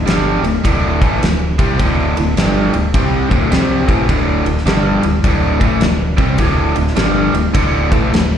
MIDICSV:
0, 0, Header, 1, 4, 480
1, 0, Start_track
1, 0, Tempo, 575264
1, 1492, Time_signature, 4, 2, 24, 8
1, 6991, End_track
2, 0, Start_track
2, 0, Title_t, "Overdriven electric guitar"
2, 0, Program_c, 0, 29
2, 48, Note_on_c, 0, 43, 89
2, 53, Note_on_c, 0, 50, 88
2, 54, Note_on_c, 0, 55, 98
2, 350, Note_off_c, 0, 43, 0
2, 352, Note_off_c, 0, 50, 0
2, 353, Note_off_c, 0, 55, 0
2, 358, Note_on_c, 0, 38, 66
2, 367, Note_on_c, 0, 45, 71
2, 498, Note_off_c, 0, 38, 0
2, 502, Note_off_c, 0, 45, 0
2, 536, Note_on_c, 0, 38, 89
2, 542, Note_on_c, 0, 45, 96
2, 543, Note_on_c, 0, 50, 98
2, 833, Note_off_c, 0, 38, 0
2, 833, Note_off_c, 0, 45, 0
2, 837, Note_off_c, 0, 50, 0
2, 843, Note_on_c, 0, 45, 80
2, 845, Note_on_c, 0, 52, 93
2, 852, Note_on_c, 0, 57, 95
2, 1009, Note_off_c, 0, 45, 0
2, 1009, Note_off_c, 0, 52, 0
2, 1013, Note_off_c, 0, 57, 0
2, 1021, Note_on_c, 0, 38, 58
2, 1023, Note_on_c, 0, 45, 70
2, 1263, Note_off_c, 0, 38, 0
2, 1264, Note_off_c, 0, 45, 0
2, 1326, Note_on_c, 0, 48, 85
2, 1328, Note_on_c, 0, 55, 85
2, 1333, Note_on_c, 0, 60, 89
2, 1489, Note_off_c, 0, 48, 0
2, 1490, Note_off_c, 0, 55, 0
2, 1493, Note_off_c, 0, 60, 0
2, 1499, Note_on_c, 0, 38, 96
2, 1499, Note_on_c, 0, 45, 100
2, 1504, Note_on_c, 0, 50, 110
2, 1794, Note_off_c, 0, 38, 0
2, 1794, Note_off_c, 0, 45, 0
2, 1796, Note_off_c, 0, 50, 0
2, 1814, Note_on_c, 0, 38, 62
2, 1820, Note_on_c, 0, 45, 68
2, 1944, Note_off_c, 0, 38, 0
2, 1947, Note_off_c, 0, 45, 0
2, 1979, Note_on_c, 0, 43, 90
2, 1985, Note_on_c, 0, 50, 95
2, 1988, Note_on_c, 0, 55, 102
2, 2274, Note_off_c, 0, 43, 0
2, 2277, Note_off_c, 0, 50, 0
2, 2278, Note_off_c, 0, 55, 0
2, 2284, Note_on_c, 0, 38, 65
2, 2290, Note_on_c, 0, 45, 69
2, 2419, Note_off_c, 0, 38, 0
2, 2422, Note_off_c, 0, 45, 0
2, 2454, Note_on_c, 0, 48, 90
2, 2459, Note_on_c, 0, 55, 88
2, 2462, Note_on_c, 0, 60, 105
2, 2748, Note_off_c, 0, 48, 0
2, 2751, Note_off_c, 0, 55, 0
2, 2751, Note_on_c, 0, 38, 76
2, 2755, Note_off_c, 0, 60, 0
2, 2755, Note_on_c, 0, 45, 79
2, 2758, Note_on_c, 0, 50, 91
2, 2921, Note_off_c, 0, 38, 0
2, 2923, Note_off_c, 0, 45, 0
2, 2925, Note_off_c, 0, 50, 0
2, 2928, Note_on_c, 0, 48, 84
2, 2934, Note_on_c, 0, 55, 83
2, 2935, Note_on_c, 0, 60, 91
2, 3225, Note_off_c, 0, 48, 0
2, 3228, Note_on_c, 0, 45, 87
2, 3229, Note_off_c, 0, 55, 0
2, 3232, Note_off_c, 0, 60, 0
2, 3233, Note_on_c, 0, 52, 90
2, 3238, Note_on_c, 0, 57, 86
2, 3400, Note_off_c, 0, 45, 0
2, 3402, Note_off_c, 0, 52, 0
2, 3405, Note_off_c, 0, 57, 0
2, 3410, Note_on_c, 0, 38, 94
2, 3410, Note_on_c, 0, 45, 90
2, 3416, Note_on_c, 0, 50, 101
2, 3702, Note_off_c, 0, 38, 0
2, 3708, Note_off_c, 0, 45, 0
2, 3712, Note_off_c, 0, 50, 0
2, 3712, Note_on_c, 0, 38, 64
2, 3718, Note_on_c, 0, 45, 72
2, 3853, Note_off_c, 0, 38, 0
2, 3856, Note_off_c, 0, 45, 0
2, 3887, Note_on_c, 0, 43, 90
2, 3894, Note_on_c, 0, 50, 87
2, 3895, Note_on_c, 0, 55, 105
2, 4188, Note_off_c, 0, 43, 0
2, 4191, Note_off_c, 0, 50, 0
2, 4192, Note_off_c, 0, 55, 0
2, 4202, Note_on_c, 0, 38, 67
2, 4207, Note_on_c, 0, 45, 70
2, 4338, Note_off_c, 0, 38, 0
2, 4340, Note_off_c, 0, 45, 0
2, 4371, Note_on_c, 0, 45, 92
2, 4373, Note_on_c, 0, 38, 95
2, 4374, Note_on_c, 0, 50, 100
2, 4659, Note_off_c, 0, 45, 0
2, 4666, Note_off_c, 0, 38, 0
2, 4669, Note_on_c, 0, 45, 79
2, 4672, Note_off_c, 0, 50, 0
2, 4672, Note_on_c, 0, 52, 90
2, 4676, Note_on_c, 0, 57, 97
2, 4841, Note_off_c, 0, 45, 0
2, 4842, Note_off_c, 0, 52, 0
2, 4844, Note_off_c, 0, 57, 0
2, 4849, Note_on_c, 0, 38, 62
2, 4856, Note_on_c, 0, 45, 60
2, 5097, Note_off_c, 0, 38, 0
2, 5101, Note_off_c, 0, 45, 0
2, 5152, Note_on_c, 0, 48, 87
2, 5157, Note_on_c, 0, 55, 90
2, 5159, Note_on_c, 0, 60, 96
2, 5323, Note_off_c, 0, 48, 0
2, 5325, Note_off_c, 0, 55, 0
2, 5326, Note_off_c, 0, 60, 0
2, 5332, Note_on_c, 0, 38, 90
2, 5333, Note_on_c, 0, 45, 95
2, 5337, Note_on_c, 0, 50, 94
2, 5626, Note_off_c, 0, 38, 0
2, 5632, Note_off_c, 0, 45, 0
2, 5634, Note_off_c, 0, 50, 0
2, 5636, Note_on_c, 0, 38, 66
2, 5642, Note_on_c, 0, 45, 74
2, 5776, Note_off_c, 0, 38, 0
2, 5779, Note_off_c, 0, 45, 0
2, 5806, Note_on_c, 0, 43, 89
2, 5812, Note_on_c, 0, 50, 89
2, 5815, Note_on_c, 0, 55, 102
2, 6109, Note_off_c, 0, 43, 0
2, 6112, Note_off_c, 0, 50, 0
2, 6114, Note_off_c, 0, 55, 0
2, 6124, Note_on_c, 0, 38, 70
2, 6126, Note_on_c, 0, 45, 72
2, 6260, Note_off_c, 0, 38, 0
2, 6261, Note_off_c, 0, 45, 0
2, 6287, Note_on_c, 0, 38, 87
2, 6292, Note_on_c, 0, 50, 104
2, 6293, Note_on_c, 0, 45, 93
2, 6590, Note_off_c, 0, 38, 0
2, 6591, Note_off_c, 0, 45, 0
2, 6592, Note_off_c, 0, 50, 0
2, 6601, Note_on_c, 0, 45, 81
2, 6603, Note_on_c, 0, 52, 82
2, 6605, Note_on_c, 0, 57, 88
2, 6768, Note_off_c, 0, 45, 0
2, 6769, Note_off_c, 0, 52, 0
2, 6770, Note_off_c, 0, 57, 0
2, 6773, Note_on_c, 0, 38, 60
2, 6781, Note_on_c, 0, 45, 62
2, 6991, Note_off_c, 0, 38, 0
2, 6991, Note_off_c, 0, 45, 0
2, 6991, End_track
3, 0, Start_track
3, 0, Title_t, "Fingered electric bass"
3, 0, Program_c, 1, 33
3, 55, Note_on_c, 1, 31, 91
3, 341, Note_off_c, 1, 31, 0
3, 361, Note_on_c, 1, 26, 75
3, 521, Note_off_c, 1, 26, 0
3, 540, Note_on_c, 1, 26, 91
3, 824, Note_off_c, 1, 26, 0
3, 846, Note_on_c, 1, 33, 95
3, 1003, Note_off_c, 1, 33, 0
3, 1017, Note_on_c, 1, 26, 75
3, 1302, Note_off_c, 1, 26, 0
3, 1326, Note_on_c, 1, 36, 91
3, 1483, Note_off_c, 1, 36, 0
3, 1496, Note_on_c, 1, 26, 91
3, 1781, Note_off_c, 1, 26, 0
3, 1810, Note_on_c, 1, 26, 80
3, 1965, Note_off_c, 1, 26, 0
3, 1975, Note_on_c, 1, 31, 93
3, 2260, Note_off_c, 1, 31, 0
3, 2287, Note_on_c, 1, 26, 73
3, 2443, Note_off_c, 1, 26, 0
3, 2456, Note_on_c, 1, 36, 94
3, 2740, Note_off_c, 1, 36, 0
3, 2761, Note_on_c, 1, 26, 93
3, 2919, Note_off_c, 1, 26, 0
3, 2938, Note_on_c, 1, 36, 88
3, 3221, Note_off_c, 1, 36, 0
3, 3238, Note_on_c, 1, 33, 86
3, 3398, Note_off_c, 1, 33, 0
3, 3411, Note_on_c, 1, 26, 88
3, 3697, Note_off_c, 1, 26, 0
3, 3716, Note_on_c, 1, 26, 79
3, 3877, Note_off_c, 1, 26, 0
3, 3887, Note_on_c, 1, 31, 96
3, 4176, Note_off_c, 1, 31, 0
3, 4202, Note_on_c, 1, 26, 74
3, 4360, Note_off_c, 1, 26, 0
3, 4373, Note_on_c, 1, 26, 95
3, 4659, Note_off_c, 1, 26, 0
3, 4682, Note_on_c, 1, 33, 94
3, 4840, Note_off_c, 1, 33, 0
3, 4849, Note_on_c, 1, 26, 75
3, 5137, Note_off_c, 1, 26, 0
3, 5158, Note_on_c, 1, 36, 90
3, 5319, Note_off_c, 1, 36, 0
3, 5330, Note_on_c, 1, 26, 90
3, 5618, Note_off_c, 1, 26, 0
3, 5648, Note_on_c, 1, 26, 86
3, 5805, Note_off_c, 1, 26, 0
3, 5813, Note_on_c, 1, 31, 89
3, 6100, Note_off_c, 1, 31, 0
3, 6122, Note_on_c, 1, 26, 71
3, 6281, Note_off_c, 1, 26, 0
3, 6299, Note_on_c, 1, 26, 97
3, 6584, Note_off_c, 1, 26, 0
3, 6609, Note_on_c, 1, 33, 95
3, 6754, Note_off_c, 1, 33, 0
3, 6759, Note_on_c, 1, 26, 80
3, 6991, Note_off_c, 1, 26, 0
3, 6991, End_track
4, 0, Start_track
4, 0, Title_t, "Drums"
4, 62, Note_on_c, 9, 51, 90
4, 73, Note_on_c, 9, 38, 110
4, 145, Note_off_c, 9, 51, 0
4, 156, Note_off_c, 9, 38, 0
4, 370, Note_on_c, 9, 51, 71
4, 453, Note_off_c, 9, 51, 0
4, 541, Note_on_c, 9, 36, 105
4, 543, Note_on_c, 9, 51, 100
4, 624, Note_off_c, 9, 36, 0
4, 627, Note_off_c, 9, 51, 0
4, 848, Note_on_c, 9, 36, 94
4, 851, Note_on_c, 9, 51, 68
4, 932, Note_off_c, 9, 36, 0
4, 934, Note_off_c, 9, 51, 0
4, 1024, Note_on_c, 9, 51, 93
4, 1034, Note_on_c, 9, 38, 103
4, 1107, Note_off_c, 9, 51, 0
4, 1118, Note_off_c, 9, 38, 0
4, 1327, Note_on_c, 9, 36, 110
4, 1329, Note_on_c, 9, 51, 74
4, 1410, Note_off_c, 9, 36, 0
4, 1413, Note_off_c, 9, 51, 0
4, 1496, Note_on_c, 9, 51, 92
4, 1498, Note_on_c, 9, 36, 102
4, 1580, Note_off_c, 9, 51, 0
4, 1581, Note_off_c, 9, 36, 0
4, 1810, Note_on_c, 9, 51, 72
4, 1894, Note_off_c, 9, 51, 0
4, 1978, Note_on_c, 9, 51, 90
4, 1989, Note_on_c, 9, 38, 107
4, 2062, Note_off_c, 9, 51, 0
4, 2072, Note_off_c, 9, 38, 0
4, 2282, Note_on_c, 9, 51, 69
4, 2366, Note_off_c, 9, 51, 0
4, 2454, Note_on_c, 9, 51, 91
4, 2455, Note_on_c, 9, 36, 108
4, 2538, Note_off_c, 9, 36, 0
4, 2538, Note_off_c, 9, 51, 0
4, 2764, Note_on_c, 9, 36, 98
4, 2767, Note_on_c, 9, 51, 61
4, 2847, Note_off_c, 9, 36, 0
4, 2850, Note_off_c, 9, 51, 0
4, 2935, Note_on_c, 9, 51, 87
4, 2945, Note_on_c, 9, 38, 105
4, 3018, Note_off_c, 9, 51, 0
4, 3029, Note_off_c, 9, 38, 0
4, 3243, Note_on_c, 9, 36, 106
4, 3243, Note_on_c, 9, 51, 68
4, 3326, Note_off_c, 9, 36, 0
4, 3327, Note_off_c, 9, 51, 0
4, 3413, Note_on_c, 9, 36, 103
4, 3414, Note_on_c, 9, 51, 83
4, 3496, Note_off_c, 9, 36, 0
4, 3498, Note_off_c, 9, 51, 0
4, 3723, Note_on_c, 9, 51, 64
4, 3806, Note_off_c, 9, 51, 0
4, 3819, Note_on_c, 9, 38, 32
4, 3894, Note_on_c, 9, 51, 89
4, 3903, Note_off_c, 9, 38, 0
4, 3904, Note_on_c, 9, 38, 104
4, 3977, Note_off_c, 9, 51, 0
4, 3988, Note_off_c, 9, 38, 0
4, 4199, Note_on_c, 9, 51, 69
4, 4282, Note_off_c, 9, 51, 0
4, 4372, Note_on_c, 9, 51, 92
4, 4373, Note_on_c, 9, 36, 101
4, 4455, Note_off_c, 9, 51, 0
4, 4456, Note_off_c, 9, 36, 0
4, 4681, Note_on_c, 9, 36, 91
4, 4681, Note_on_c, 9, 51, 70
4, 4764, Note_off_c, 9, 36, 0
4, 4765, Note_off_c, 9, 51, 0
4, 4847, Note_on_c, 9, 51, 92
4, 4857, Note_on_c, 9, 38, 109
4, 4930, Note_off_c, 9, 51, 0
4, 4941, Note_off_c, 9, 38, 0
4, 5158, Note_on_c, 9, 36, 112
4, 5158, Note_on_c, 9, 51, 69
4, 5241, Note_off_c, 9, 51, 0
4, 5242, Note_off_c, 9, 36, 0
4, 5325, Note_on_c, 9, 51, 101
4, 5329, Note_on_c, 9, 36, 102
4, 5408, Note_off_c, 9, 51, 0
4, 5413, Note_off_c, 9, 36, 0
4, 5638, Note_on_c, 9, 51, 74
4, 5721, Note_off_c, 9, 51, 0
4, 5736, Note_on_c, 9, 38, 30
4, 5811, Note_on_c, 9, 51, 95
4, 5820, Note_off_c, 9, 38, 0
4, 5822, Note_on_c, 9, 38, 112
4, 5895, Note_off_c, 9, 51, 0
4, 5905, Note_off_c, 9, 38, 0
4, 6128, Note_on_c, 9, 51, 70
4, 6212, Note_off_c, 9, 51, 0
4, 6296, Note_on_c, 9, 51, 100
4, 6297, Note_on_c, 9, 36, 109
4, 6379, Note_off_c, 9, 51, 0
4, 6380, Note_off_c, 9, 36, 0
4, 6607, Note_on_c, 9, 36, 103
4, 6610, Note_on_c, 9, 51, 61
4, 6690, Note_off_c, 9, 36, 0
4, 6694, Note_off_c, 9, 51, 0
4, 6789, Note_on_c, 9, 51, 91
4, 6800, Note_on_c, 9, 38, 104
4, 6873, Note_off_c, 9, 51, 0
4, 6883, Note_off_c, 9, 38, 0
4, 6991, End_track
0, 0, End_of_file